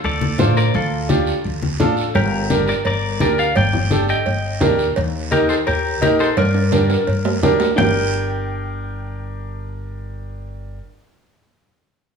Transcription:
0.04 0.41 D2 medium
0.04 0.54 A4 medium
0.04 0.54 D5 medium
0.04 long guiro medium
0.21 high conga medium
0.38 0.68 A1 loud
0.38 0.64 D4 medium
0.38 0.64 F4 medium
0.38 0.64 C5 medium
0.38 high conga medium
0.38 short guiro medium
0.57 0.73 A#4 medium
0.57 0.74 D5 loud
0.57 short guiro medium
0.74 1.31 D2 loud
0.74 1.08 F4 medium
0.74 1.08 A4 medium
0.74 long guiro medium
1.09 1.34 D4 medium
1.09 1.34 F4 medium
1.09 1.34 G4 medium
1.09 high conga medium
1.09 short guiro medium
1.27 short guiro medium
1.45 1.80 D2 medium
1.45 long guiro medium
1.62 high conga medium
1.80 2.08 A1 medium
1.80 2.04 D4 medium
1.80 2.05 F4 medium
1.80 2.05 A4 loud
1.80 high conga medium
1.80 low conga medium
1.80 short guiro medium
1.97 short guiro medium
2.15 2.71 G1 loud
2.15 2.64 G4 medium
2.15 2.64 A#4 medium
2.15 cowbell medium
2.15 long guiro medium
2.50 2.75 D4 medium
2.50 2.75 G4 medium
2.50 2.75 A#4 medium
2.50 high conga medium
2.50 short guiro medium
2.68 2.74 A#4 medium
2.68 2.74 D5 medium
2.68 short guiro medium
2.85 3.22 G1 loud
2.85 3.19 A#4 medium
2.85 3.19 D5 medium
2.85 cowbell medium
2.85 long guiro medium
3.20 3.49 D2 loud
3.20 3.45 D4 medium
3.20 3.45 G4 medium
3.20 3.45 A#4 medium
3.20 3.37 A#4 medium
3.20 3.38 D5 medium
3.20 high conga medium
3.20 short guiro medium
3.38 3.55 D5 medium
3.38 3.55 F5 medium
3.38 short guiro medium
3.56 4.12 G1 loud
3.56 4.05 D5 medium
3.56 4.05 G5 medium
3.56 cowbell loud
3.56 long guiro medium
3.73 low conga medium
3.90 4.15 D4 medium
3.90 4.16 G4 medium
3.90 4.16 A4 medium
3.90 high conga medium
3.90 short guiro medium
4.09 4.76 D#5 medium
4.09 4.75 G5 medium
4.09 short guiro medium
4.26 4.63 G1 loud
4.26 cowbell medium
4.26 long guiro medium
4.61 4.90 D2 loud
4.61 4.86 D4 medium
4.61 4.86 G4 medium
4.61 4.86 A#4 loud
4.61 high conga medium
4.61 low conga medium
4.61 short guiro medium
4.79 short guiro medium
4.96 5.53 D#2 loud
4.96 cowbell loud
4.96 long guiro medium
5.31 5.56 D#4 medium
5.31 5.56 G4 medium
5.31 5.49 G4 medium
5.31 5.48 A#4 medium
5.31 5.56 A#4 medium
5.31 high conga medium
5.31 short guiro medium
5.49 5.55 A4 medium
5.49 5.54 C5 medium
5.49 short guiro medium
5.67 6.02 D#2 medium
5.67 6.00 G4 medium
5.67 6.00 A#4 medium
5.67 cowbell loud
5.67 long guiro medium
6.01 6.30 A#1 loud
6.01 6.26 D#4 medium
6.01 6.27 G4 medium
6.01 6.08 G4 medium
6.01 6.07 A#4 medium
6.01 6.27 A#4 medium
6.01 high conga medium
6.01 low timbale medium
6.01 short guiro medium
6.19 6.37 A4 medium
6.19 6.37 C5 loud
6.19 short guiro medium
6.37 6.94 G2 loud
6.37 7.40 A#4 medium
6.37 7.39 D5 loud
6.37 cowbell loud
6.37 high timbale medium
6.37 long guiro medium
6.54 high timbale medium
6.72 6.97 D4 medium
6.72 6.97 G4 medium
6.72 6.97 A#4 medium
6.72 high conga medium
6.72 high timbale medium
6.72 short guiro medium
6.90 high timbale medium
6.90 short guiro medium
7.07 7.43 G2 medium
7.07 cowbell medium
7.07 long guiro medium
7.25 low timbale loud
7.43 7.71 D2 loud
7.43 7.68 D4 medium
7.43 7.68 G4 medium
7.43 7.68 A#4 loud
7.43 high conga medium
7.43 low conga medium
7.43 low timbale medium
7.43 short guiro medium
7.60 low timbale medium
7.60 short guiro medium
7.76 10.79 G1 loud
7.76 10.76 D4 medium
7.76 10.78 G4 medium
7.76 10.78 G5 medium
7.76 low conga loud
7.76 low timbale loud
7.76 long guiro loud
7.80 10.80 A#4 medium

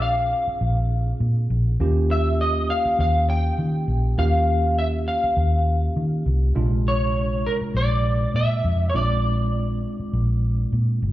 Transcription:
0.00 0.33 A#1 medium
0.00 1.75 C4 medium
0.00 1.76 D4 medium
0.00 1.76 F4 medium
0.00 1.76 G#4 medium
0.00 1.17 F5 medium
0.47 muted fingered electric bass stroke soft
0.61 1.12 A#1 medium
1.20 1.46 A#2 medium
1.50 1.76 A#1 medium
1.80 2.71 D#2 medium
1.80 4.14 A#3 medium
1.80 4.14 C#4 medium
1.80 4.15 F4 medium
1.80 4.15 G4 medium
2.11 2.38 E5 medium
2.41 2.70 D#5 medium
2.70 2.99 F5 medium
2.85 muted fingered electric bass stroke soft
2.99 3.50 D#2 medium
2.99 3.28 F5 medium
3.30 4.18 G5 loud
3.58 3.84 D#3 medium
3.88 4.14 A#1 medium
4.18 5.09 D#2 medium
4.18 6.52 A#3 medium
4.18 6.52 C#4 medium
4.18 6.52 F4 medium
4.18 6.53 G4 medium
4.18 4.78 F5 medium
4.79 4.86 E5 medium
5.08 6.23 F5 medium
5.24 muted fingered electric bass stroke soft
5.37 5.88 D#2 medium
5.96 6.22 D#3 medium
6.26 6.52 C2 loud
6.55 7.47 A#1 loud
6.55 8.90 C3 medium
6.55 8.90 G#3 medium
6.55 8.90 D4 medium
6.55 8.90 F4 medium
6.88 7.48 C#5 medium
7.47 7.54 A#4 medium
7.61 muted fingered electric bass stroke soft
7.74 8.26 A#1 medium
7.74 8.31 D5 medium
8.34 8.60 A#2 medium
8.34 8.89 E5 loud
8.64 8.90 F2 medium
8.90 8.95 C#5 medium
8.94 9.85 A#1 loud
8.94 11.13 G#3 medium
8.94 11.13 C4 medium
8.94 11.13 D4 medium
8.94 11.13 F4 medium
8.94 10.70 D5 medium
10.00 muted fingered electric bass stroke soft
10.13 10.64 A#1 medium
10.72 10.98 A#2 medium
11.02 11.13 G1 medium

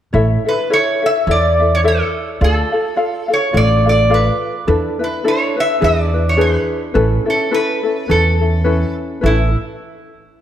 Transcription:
0.13 0.34 A1 medium
0.13 0.45 E4 medium
0.13 0.45 A4 medium
0.13 0.44 C#5 medium
0.13 0.44 E5 medium
0.45 0.69 E4 soft
0.45 0.70 A4 soft
0.45 0.72 B4 medium
0.45 0.70 E5 soft
0.70 1.02 E4 medium
0.70 1.02 A4 medium
0.70 1.02 C#5 medium
0.70 1.05 C#5 medium
0.70 1.01 E5 medium
1.02 1.27 E4 soft
1.02 1.27 A4 soft
1.02 1.27 E5 soft
1.02 1.27 E5 medium
1.27 2.01 E2 medium
1.27 1.60 E4 medium
1.27 1.60 A4 medium
1.27 1.59 C#5 medium
1.27 1.70 D5 medium
1.27 1.58 E5 medium
1.60 1.82 E4 soft
1.60 1.83 A4 soft
1.60 1.83 E5 medium
1.75 1.79 C#5 medium
1.83 2.40 E4 medium
1.83 2.41 A4 medium
1.83 2.40 C#5 medium
1.83 2.41 E5 medium
1.88 2.27 A4 medium
2.41 2.62 D2 medium
2.41 2.73 F4 medium
2.41 2.72 A4 medium
2.41 3.34 A4 medium
2.41 2.73 D5 medium
2.41 2.71 F5 medium
2.72 2.95 F4 soft
2.72 2.96 A4 soft
2.72 2.96 F5 soft
2.96 3.29 F4 medium
2.96 3.29 A4 medium
2.96 3.29 D5 medium
2.96 3.27 F5 medium
3.28 3.52 F4 soft
3.28 3.53 A4 soft
3.28 3.53 F5 soft
3.33 3.57 C#5 medium
3.52 4.28 A1 medium
3.52 3.86 F4 medium
3.52 3.85 A4 medium
3.52 3.85 D5 medium
3.52 3.84 F5 medium
3.57 3.88 D5 medium
3.85 4.09 F4 soft
3.85 4.09 A4 soft
3.85 4.13 D5 medium
3.85 4.09 F5 soft
4.10 4.67 F4 medium
4.10 4.66 A4 medium
4.10 4.67 D5 medium
4.10 4.67 F5 medium
4.14 4.54 B4 medium
4.67 4.89 E2 medium
4.67 5.00 D4 medium
4.67 4.99 E4 medium
4.67 5.00 A4 medium
4.67 4.98 B4 medium
4.99 5.24 D4 soft
4.99 5.24 E4 soft
4.99 5.24 B4 soft
5.04 5.27 B4 medium
5.24 5.57 D4 medium
5.24 5.56 E4 medium
5.24 5.56 A4 medium
5.24 5.55 B4 medium
5.24 5.59 C#5 medium
5.57 5.80 D4 soft
5.57 5.80 E4 soft
5.57 5.81 B4 soft
5.57 5.84 E5 medium
5.81 6.56 E2 medium
5.81 6.13 D4 medium
5.81 6.14 E4 medium
5.81 6.13 G#4 medium
5.81 6.13 B4 medium
5.81 6.28 D5 medium
6.14 6.36 D4 soft
6.14 6.37 E4 soft
6.14 6.37 B4 soft
6.29 6.40 C#5 medium
6.37 6.94 D4 medium
6.37 6.94 E4 medium
6.37 6.94 G#4 medium
6.37 6.94 B4 medium
6.41 6.81 B4 medium
6.94 7.16 A1 medium
6.94 7.26 C#4 medium
6.94 7.25 E4 medium
6.94 7.24 A4 medium
6.94 7.25 B4 medium
7.26 7.50 C#4 soft
7.26 7.51 E4 soft
7.26 7.51 A4 soft
7.30 7.54 A4 medium
7.51 7.84 C#4 medium
7.51 7.83 E4 medium
7.51 7.82 A4 medium
7.51 7.83 B4 medium
7.51 8.12 B4 medium
7.83 8.07 C#4 soft
7.83 8.08 E4 soft
7.83 8.07 A4 soft
8.08 8.83 E2 medium
8.08 8.40 C#4 medium
8.08 8.40 E4 medium
8.08 8.38 A4 medium
8.08 8.95 A4 medium
8.08 8.39 B4 medium
8.40 8.63 C#4 soft
8.40 8.64 E4 soft
8.40 8.64 A4 soft
8.64 9.22 C#4 medium
8.64 9.23 E4 medium
8.64 9.23 A4 medium
8.64 9.21 B4 medium
9.21 9.53 A1 medium
9.21 9.48 C#4 medium
9.21 9.49 E4 medium
9.21 9.49 A4 medium
9.21 9.48 B4 medium
9.26 9.54 E4 medium

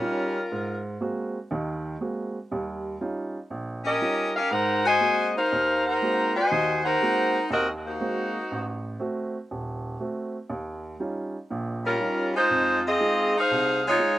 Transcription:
0.00 0.48 G3 medium
0.00 0.37 G3 medium
0.00 0.48 C#4 medium
0.00 0.37 C#4 soft
0.00 0.37 D#4 medium
0.00 0.82 F4 medium
0.00 0.37 F4 medium
0.00 0.82 A#4 medium
0.52 0.95 G#2 medium
1.00 1.36 G#3 medium
1.00 1.36 A#3 medium
1.00 1.36 C4 medium
1.00 1.37 F#4 medium
1.51 1.94 D#2 medium
1.51 1.94 D#3 medium
2.01 2.36 G#3 medium
2.01 2.36 A#3 soft
2.01 2.37 C4 soft
2.01 2.37 F#4 medium
2.51 2.95 D#2 medium
2.51 2.95 G3 medium
3.01 3.36 G3 medium
3.01 3.36 C#4 medium
3.01 3.37 D#4 medium
3.01 3.37 F4 medium
3.50 3.94 A#1 medium
3.84 4.31 C#4 medium
3.84 4.31 G4 medium
3.84 4.31 A#4 medium
3.84 4.31 D#5 loud
4.01 4.37 G3 medium
4.01 4.37 C#4 soft
4.01 4.37 D#4 soft
4.01 4.37 F4 medium
4.36 4.50 C#4 medium
4.36 4.50 G4 medium
4.36 4.50 A#4 medium
4.36 4.50 F5 loud
4.51 4.94 G#2 medium
4.51 4.85 D#4 loud
4.51 4.85 A#4 loud
4.51 4.84 C5 loud
4.51 4.85 F#5 loud
4.85 5.32 F#4 loud
4.85 5.31 C5 loud
4.85 5.32 D#5 loud
4.85 5.32 G#5 loud
5.00 5.36 G#3 medium
5.00 5.36 A#3 soft
5.00 5.36 C4 medium
5.00 5.36 F#4 medium
5.36 5.86 D#4 medium
5.36 5.85 A#4 loud
5.36 5.85 C5 medium
5.36 5.85 F5 loud
5.52 5.95 D#2 medium
5.87 6.36 D#4 medium
5.87 6.36 A#4 loud
5.87 6.34 C5 medium
5.87 6.36 F#5 loud
6.02 6.37 G#3 medium
6.02 6.37 A#3 soft
6.02 6.37 C4 soft
6.02 6.37 F#4 medium
6.35 6.81 F#4 loud
6.35 6.81 C5 loud
6.35 6.81 D#5 loud
6.35 6.82 G#5 loud
6.51 6.94 D#2 medium
6.51 6.94 D#3 medium
6.85 7.47 D#4 loud
6.85 7.47 A#4 loud
6.85 7.47 C5 medium
6.85 7.47 F#5 loud
7.01 7.36 G#3 medium
7.01 7.37 A#3 medium
7.01 7.37 C4 medium
7.01 7.37 F#4 medium
7.50 7.94 D#2 medium
7.50 7.67 C4 medium
7.50 7.67 F#4 medium
7.50 7.66 A#4 medium
7.50 7.67 D#5 loud
7.86 8.47 A#3 medium
7.86 8.81 D#4 medium
7.86 8.81 F#4 medium
7.86 8.81 C5 medium
8.00 8.36 G#3 medium
8.00 8.36 A#3 medium
8.00 8.36 C4 medium
8.00 8.36 F#4 medium
8.51 8.94 A1 medium
8.99 9.35 A3 medium
8.99 9.36 C4 medium
8.99 9.36 F#4 medium
9.51 9.94 D#1 medium
10.00 10.35 A3 medium
10.00 10.36 C4 medium
10.00 10.36 F#4 medium
10.50 10.93 D#2 medium
11.00 11.35 G3 medium
11.00 11.35 C#4 soft
11.00 11.36 D#4 medium
11.00 11.36 F4 medium
11.51 11.94 A#1 medium
11.51 11.94 A#2 medium
11.85 12.31 G3 medium
11.85 12.31 C#4 medium
11.85 12.31 F4 medium
11.85 12.31 A#4 medium
12.01 12.36 G3 medium
12.01 12.36 C#4 soft
12.01 12.36 D#4 soft
12.01 12.36 F4 medium
12.35 12.81 G#3 medium
12.35 12.81 D#4 medium
12.35 12.81 F4 medium
12.35 12.81 C5 loud
12.50 12.93 F2 medium
12.87 13.35 C4 loud
12.87 13.35 F4 loud
12.87 13.36 G#4 loud
12.87 13.35 D#5 loud
13.00 13.35 G#3 medium
13.00 13.35 D#4 medium
13.00 13.36 F4 medium
13.38 13.82 D#4 loud
13.38 13.82 G#4 loud
13.38 13.83 C5 loud
13.38 13.83 F5 loud
13.51 13.94 C2 medium
13.87 14.19 G#3 medium
13.87 14.19 D#4 medium
13.87 14.19 F4 medium
13.87 14.19 C#5 loud
13.99 14.19 G#3 medium
13.99 14.19 D#4 soft
13.99 14.19 F4 medium

